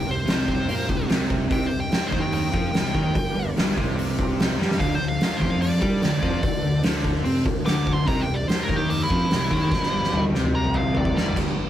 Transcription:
Already playing: C4 G4 A#4 E5
0.06 C2 C3
0.11 C5
0.26 C2 C3, snare, open hi-hat
0.31 C5
0.48 kick
0.68 A#2 A#3, open hi-hat
0.89 C2 C3, kick
1.08 C2 C3, snare, open hi-hat
1.30 kick
1.49 C2 C3 C4 G4 A#4 E5 G5, kick, open hi-hat
1.66 C3 C5
1.72 C2
1.80 G5
1.89 G5, muted overdriven electric guitar stroke, muted fingered electric bass stroke, snare, open hi-hat
2.07 D#3 C5
2.12 D#2, kick
2.21 G5
2.32 G5, open hi-hat
2.52 F2 F3, kick
2.73 C2 C3, snare, open hi-hat
2.94 D#2 D#3, kick
3.11 G2 D#4 F#4 G#4 C5, kick, open hi-hat
3.16 G1
3.27 D4 F4 G4 B4
3.35 G1 G2
3.56 G1 G2, snare, open hi-hat
3.75 C2 C3, kick
3.99 open hi-hat
4.19 kick
4.40 snare, open hi-hat
4.57 G2 G3
4.62 snare
4.71 snare
4.77 D2 D3 D4 A4 C5 F5 F#5, kick, open hi-hat
4.95 D3 C5
5.03 D2
5.08 F5
5.19 muted overdriven electric guitar stroke, muted fingered electric bass stroke, snare, open hi-hat
5.24 F5
5.37 F3 C5
5.41 F2, kick
5.50 F5
5.62 D5, open hi-hat
5.79 G2 G3, kick
6.02 D2 D3, snare, open hi-hat
6.22 F2 F3, kick
6.43 D2 D3, kick, open hi-hat
6.63 D2 D3
6.83 D2 D3, snare, open hi-hat
7.04 kick
7.24 C3 C4, open hi-hat
7.45 D2 D3, kick
7.64 D2 D3 D6, snare, open hi-hat
7.87 kick
7.93 C6
8.06 C2 C3 G4 A#4 C5 E5 A#5, kick, open hi-hat
8.21 G5
8.27 C2 C3
8.34 D5
8.47 C5, muted overdriven electric guitar stroke, muted fingered electric bass stroke, snare, open hi-hat
8.63 A#4
8.68 D#2 D#3, kick
8.76 G4
8.90 D4, open hi-hat
9.03 E4
9.10 F2 F3, kick
9.31 C2 C3, snare, open hi-hat
9.51 D#2 D#3, kick
9.71 G1 G2 F#4 G#4 C5 D#5, kick, snare
9.83 F3 G4 B4 D5, snare
9.92 G1 G2
10.04 snare
10.13 G1 G2, mid tom
10.33 C2 C3, snare
10.44 mid tom
10.55 A#5
10.64 mid tom
10.74 F5, mid tom
10.95 D5, floor tom
11.05 G3 A3, kick
11.12 G3 B3 C4
11.16 G2 D4 E4 D5, snare
11.23 F4 G4, floor tom
11.28 A4 B4
11.34 G1 G2 F4 G4 B4 C5 D5, kick, crash
11.56 G1 G2

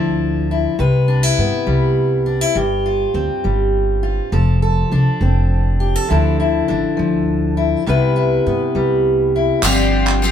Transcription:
Already playing: D2 D3 F3 D4 E4 A4
0.51 E4
0.79 C2 C3 B4
1.08 D4
1.23 E4
1.38 G2 B3
1.67 C2 G3
2.26 D4
2.41 E4
2.55 G1 G2 G4
2.86 F4
3.14 D2 C4
3.44 G1 G3
4.03 F4
4.32 F1 F3 A4
4.62 A4
4.92 C2 D4
5.21 F1 C4
5.80 G4
5.96 A4
6.09 D2 D3 F3 D4 E4 A4
6.40 E4
6.68 A1 D4
6.97 D2 F3
7.57 E4
7.86 C2 C3 G3 B3 E4 B4
8.16 E4
8.46 G2 B3
8.75 C2 G3
9.36 E4
9.62 G1 G2 D3 F3 C4 F4 G4, clap, tambourine
10.07 clap
10.22 F3 C4 F4 G4

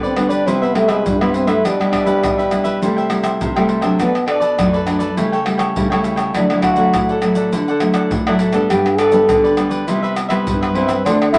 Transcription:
Already playing: D3 G3 B3 D4
0.03 C4 G4 B4 D5, pandeiro, shaker
0.16 G3 B3 D4, pandeiro, tamborim
0.29 D4 G4 B4 D5, pandeiro, shaker
0.46 C3 G3 B3 C4 E4 B4 C5 E5, pandeiro, shaker, surdo
0.62 B3 B4 C5 E5, pandeiro, shaker
0.75 G3 A3 B3 E4, pandeiro, tamborim
0.88 G#3 B4 C5 E5, pandeiro, tamborim, shaker
1.06 G2 G3, pandeiro, shaker, surdo
1.21 G3 B3 E4 B4 C5 E5, pandeiro, tamborim, shaker
1.34 C4 E4 B4 C5 E5, pandeiro, shaker
1.47 G3 A3 D4 E4 B4 C5 E5, pandeiro, tamborim, shaker
1.64 B2 G3 D4 G4 B4 E5, pandeiro, tamborim, shaker, surdo
1.80 G3 D4 E4, pandeiro, tamborim, shaker
1.92 D4 G4 B4 E5, pandeiro, tamborim, surdo
2.05 G3 D4 E4 G4 B4 E5, pandeiro, shaker
2.22 B2 D4 G4 B4 E5, pandeiro, tamborim, shaker, surdo
2.38 G4 B4 E5, pandeiro, shaker
2.51 G3 D4 E4, pandeiro, tamborim, shaker
2.64 G4 B4 E5, pandeiro, shaker
2.81 C3 G3 A3 E4 A4 C5 E5 G5, pandeiro, shaker, surdo
2.97 C5 E5 G5, pandeiro, shaker
3.09 G3 A3 E4, muted cavaquinho stroke, pandeiro, tamborim, shaker
3.23 C5 E5 G5, pandeiro, tamborim, shaker
3.41 C3, pandeiro, shaker, surdo
3.56 G3 A3 E4 C5 E5 G5, pandeiro, tamborim, shaker
3.68 A4 C5 E5 G5, pandeiro
3.81 F#3 A3 D4 C5 E5 G5, pandeiro, tamborim, shaker
3.99 B2 B3 D4 A4 B4 D5, pandeiro, tamborim, shaker, surdo
4.14 muted cavaquinho stroke, pandeiro, tamborim, shaker
4.26 D4 A4 B4 D5, pandeiro, tamborim
4.40 A4 B4 D5, pandeiro, shaker
4.58 F#2 F#3 A3 D4 A4 B4 D5, pandeiro, tamborim, shaker, surdo
4.73 A4 B4 D5, pandeiro, shaker
4.87 F#3 A3 D4, pandeiro, tamborim, shaker
4.99 A4 B4 D5, pandeiro, shaker
5.17 C#3 G3 A3 E4 A4 C#5 G5, pandeiro, shaker, surdo
5.32 A4 C#5 G5, pandeiro, shaker
5.44 G3 A3 E4, muted cavaquinho stroke, pandeiro, tamborim
5.58 A4 C#5 G5, pandeiro, tamborim, shaker
5.76 C#3 G3 A3 E4, pandeiro, shaker, surdo
5.90 G3 A3 E4 A4 C#5 G5, pandeiro, tamborim, shaker
6.03 E4 A4 C#5 G5, pandeiro, shaker
6.16 A4 C#5 G5, pandeiro, tamborim, shaker
6.34 D3 F#3 A3 D4 E4 A4 D5 F#5, pandeiro, tamborim, shaker, surdo
6.49 F#3 A3 E4, muted cavaquinho stroke, pandeiro, tamborim, shaker
6.62 E4 F#4 A4 D5 F#5, pandeiro, tamborim, shaker, surdo
6.76 F#3 A3 E4 A4 D5 F#5, pandeiro, shaker
6.93 A2 E4 A4 D5 F#5, pandeiro, tamborim, shaker, surdo
7.09 A4 D5 F#5, pandeiro, shaker
7.22 F#3 A3 E4, pandeiro, tamborim, shaker
7.35 A4 D5 F#5, pandeiro, shaker
7.52 D3 E4 A4 D5 F#5, pandeiro, shaker, surdo
7.68 A4 D5 F#5, pandeiro, shaker
7.80 F#3 A3 E4, muted cavaquinho stroke, pandeiro, tamborim, shaker
7.94 A4 D5 F#5, pandeiro, tamborim, shaker
8.11 A2, pandeiro, shaker, surdo
8.27 F#3 A3 E4 A4 D5 F#5, pandeiro, tamborim, shaker
8.39 E4 A4 D5 F#5, pandeiro, shaker
8.52 G3 B3 D4 A4 D5 F#5, pandeiro, tamborim, shaker
8.70 G2 D4 G4 B4 D5, pandeiro, tamborim, shaker, surdo
8.86 muted cavaquinho stroke, pandeiro, tamborim, shaker
8.98 D4 G4 A4 B4 D5, pandeiro, tamborim, shaker
9.12 G3 B3 D4 G4 B4 D5, pandeiro, shaker
9.28 D3 D4 G4 B4 D5, pandeiro, tamborim, shaker, surdo
9.44 G4 B4 D5, pandeiro, shaker
9.57 G3 B3 D4, pandeiro, tamborim, shaker
9.70 G4 B4 D5, pandeiro, shaker
9.87 C3 G3 B3 E4 B4 C5 E5, pandeiro, shaker, surdo
10.02 B4 C5 E5, pandeiro, shaker
10.15 muted cavaquinho stroke, pandeiro, tamborim, shaker
10.29 G3 B3 E4 B4 C5 E5, pandeiro, tamborim, shaker
10.47 G2, pandeiro, shaker, surdo
10.61 B4 C5 E5, pandeiro, tamborim, shaker
10.74 G3 B3 C4 E4 B4 C5 E5, pandeiro
10.87 B4 C5 E5, pandeiro, tamborim, shaker
11.04 D3 A3 C4 D4 F#4 C5 D5 F#5, pandeiro, tamborim, shaker, surdo
11.20 muted cavaquinho stroke, pandeiro, tamborim, shaker
11.32 A3 C4 D4 E4 F#4 C5 D5 F#5, pandeiro, tamborim, shaker, surdo

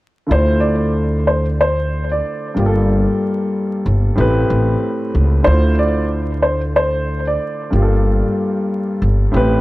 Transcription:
0.27 D3 A3 E4 F4
0.31 D2 C5
0.60 D5
1.27 C5
1.61 C5
2.12 D5
2.54 G1 G2 G3 A#3 F4
2.59 G4
2.66 A4
3.86 G1
4.15 A1 A2 A3 C4 G4
4.20 B4
4.50 A1
5.15 C#2
5.43 D3 A3 E4 F4 C5
5.47 D2 C5
5.79 D5
6.42 C5
6.76 C5
7.27 D5
7.70 G1 G2 G3 A#3 F4
7.75 G4
7.82 A4
9.02 G1
9.32 A1 A2 A3 C4 G4
9.37 B4

